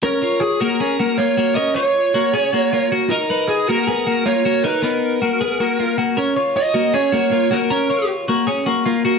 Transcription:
<<
  \new Staff \with { instrumentName = "Lead electric guitar" } { \time 4/4 \key fis \major \tempo 4 = 156 ais'4 gis'8 ais'4. cis''4 | dis''8 cis''2. r8 | ais'4 gis'8 ais'4. cis''4 | b'8 ais'2. r8 |
r4 dis''4 cis''8 cis''4 ais'8~ | ais'4 r2. | }
  \new Staff \with { instrumentName = "Clean electric guitar" } { \time 4/4 \key fis \major <cis' ais'>8 <eis' cis''>4 <ais fis'>8 <cis' gis'>8 <ais fis'>8 <ais eis'>8 <ais fis'>8 | <cis' ais'>8 <eis' cis''>4 <ais fis'>8 <cis' gis'>8 <ais fis'>8 <ais eis'>8 <ais fis'>8 | <dis' ais'>8 <dis' b'>4 <ais fis'>8 <b gis'>8 <ais fis'>8 <ais eis'>8 <ais fis'>8 | <dis' ais'>8 <b dis'>4 <ais fis'>8 <b gis'>8 <ais fis'>8 <ais eis'>8 <ais fis'>8 |
<cis' ais'>8 <eis' cis''>4 <ais fis'>8 <cis' gis'>8 <ais fis'>8 <ais eis'>8 <ais fis'>8 | <cis' ais'>8 <eis' cis''>4 <ais fis'>8 <cis' gis'>8 <ais fis'>8 <ais eis'>8 <ais fis'>8 | }
>>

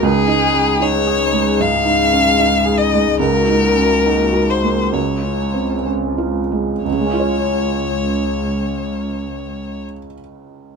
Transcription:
<<
  \new Staff \with { instrumentName = "Violin" } { \time 4/4 \key des \major \tempo 4 = 66 aes'4 des''4 f''4. ees''8 | bes'4. c''8 des''4 r4 | des''1 | }
  \new Staff \with { instrumentName = "Analog synth pad" } { \time 4/4 \key des \major << { <aes aes'>1 | <bes ges'>2 <aes f'>2 | <aes f'>1 | } \\ { ees'1~ | ees'2 des'2 | des'1 | } >> }
  \new Staff \with { instrumentName = "Felt piano" } { \time 4/4 \key des \major \tuplet 3/2 { des,8 ees'8 des'8 ees'8 aes'8 aes8 aes,8 ees'8 des'8 ees'8 aes'8 aes8 } | \tuplet 3/2 { des,8 ees'8 des'8 ees'8 ges'8 bes8 des,8 des'8 c'8 des'8 f'8 aes8 } | <des, des aes des' f' des''>1 | }
  \new Staff \with { instrumentName = "Double bass" } { \clef bass \time 4/4 \key des \major des,1~ | des,1 | des,1 | }
>>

